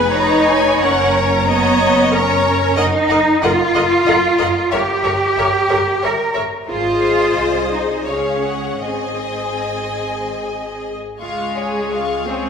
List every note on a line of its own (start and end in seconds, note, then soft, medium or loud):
0.00 0.81 F1 medium
0.00 0.10 B3 loud
0.00 0.10 B4 medium
0.00 0.80 B4 medium
0.10 0.80 D#4 loud
0.10 1.46 C#5 medium
0.10 0.45 A#5 medium
0.46 0.81 G#5 medium
0.81 2.73 F#1 medium
0.81 1.47 C#4 loud
0.81 1.48 A#4 medium
0.81 1.14 F#5 medium
1.15 2.12 A#5 medium
1.47 1.79 B3 loud
1.47 2.11 C#5 medium
1.47 2.12 D#5 medium
1.80 2.12 B3 loud
2.13 2.78 C#4 medium
2.13 2.75 A#4 medium
2.13 2.77 C#5 medium
2.13 2.76 A#5 medium
2.76 2.86 F#1 medium
2.76 3.42 D#4 loud
2.76 2.84 A#4 medium
2.76 2.84 D#5 medium
2.76 2.85 F#5 medium
3.09 3.18 F#1 medium
3.09 3.18 A#4 medium
3.09 3.17 D#5 medium
3.09 3.17 F#5 medium
3.42 3.51 F#1 medium
3.42 4.73 F4 loud
3.42 3.52 A#4 medium
3.42 3.51 D#5 medium
3.42 3.50 F#5 medium
3.74 3.83 F#1 medium
3.74 3.83 A#4 medium
3.74 3.82 D#5 medium
3.74 3.82 F#5 medium
4.05 4.15 F#1 medium
4.05 4.15 A#4 medium
4.05 4.13 D#5 medium
4.05 4.15 F#5 medium
4.38 4.48 F#1 medium
4.38 4.48 A#4 medium
4.38 4.46 D#5 medium
4.38 4.48 F#5 medium
4.71 4.80 G1 medium
4.71 6.01 G4 loud
4.71 4.81 A#4 medium
4.71 4.79 C#5 medium
4.71 4.79 E5 medium
5.04 5.13 G1 medium
5.04 5.13 A#4 medium
5.04 5.12 C#5 medium
5.04 5.12 E5 medium
5.37 5.46 G1 medium
5.37 5.47 A#4 medium
5.37 5.46 C#5 medium
5.37 5.45 E5 medium
5.70 5.79 G1 medium
5.70 5.79 A#4 medium
5.70 5.78 C#5 medium
5.70 5.78 E5 medium
6.02 6.12 G1 medium
6.02 6.11 A#4 medium
6.02 6.36 A#4 medium
6.02 6.10 C#5 medium
6.02 6.13 E5 medium
6.33 6.44 G1 medium
6.33 6.44 A#4 medium
6.33 6.41 C#5 medium
6.33 6.43 E5 medium
6.67 7.34 G#1 medium
6.67 7.69 F4 loud
6.67 8.04 G#4 medium
6.67 8.03 C5 medium
6.67 8.04 D#5 medium
7.38 8.08 C2 medium
7.73 8.08 D#4 medium
8.05 8.84 C#2 medium
8.05 8.84 C#4 medium
8.05 8.83 G#4 medium
8.05 8.83 C#5 medium
8.05 8.46 F5 medium
8.45 8.84 F#5 soft
8.82 10.95 G#1 soft
8.82 10.82 C4 medium
8.82 10.96 G#4 soft
8.82 10.94 D#5 medium
8.82 10.99 G#5 soft
11.20 12.49 C#2 soft
11.20 12.24 G#3 medium
11.20 11.53 F4 soft
11.20 11.54 F5 soft
11.20 11.54 C#6 soft
11.55 11.92 G#4 soft
11.55 11.92 C#5 soft
11.55 11.93 G#5 soft
11.92 12.28 F4 soft
11.92 12.28 F5 soft
11.92 12.28 C#6 soft
12.28 12.49 C4 medium
12.28 12.49 G#4 soft
12.28 12.49 C#5 soft
12.28 12.49 G#5 soft